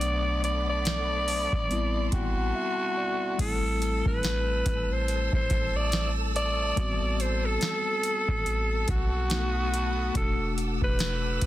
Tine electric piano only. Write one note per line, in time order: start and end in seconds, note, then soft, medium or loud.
0.00 1.66 F#3 medium
0.00 1.66 A3 medium
0.00 1.67 B3 medium
0.00 1.68 D4 medium
1.69 3.35 G3 medium
1.69 3.36 B3 medium
1.69 3.36 C4 medium
1.69 3.37 E4 medium
2.13 2.35 G5 medium
2.38 2.54 F#5 medium
2.55 2.94 E5 medium
2.97 3.36 D5 medium
3.38 6.73 G3 medium
3.38 6.73 A3 medium
3.38 6.74 C4 medium
3.38 6.75 E4 medium
6.76 9.26 G3 medium
6.76 9.27 B3 medium
6.76 9.27 C4 medium
6.76 9.28 F#4 medium
9.30 10.13 A3 medium
9.30 10.15 B3 medium
9.30 10.16 D#4 medium
9.30 10.16 F#4 medium
10.14 11.46 B2 medium
10.14 11.46 A3 medium
10.14 11.46 D4 medium
10.14 11.46 F#4 medium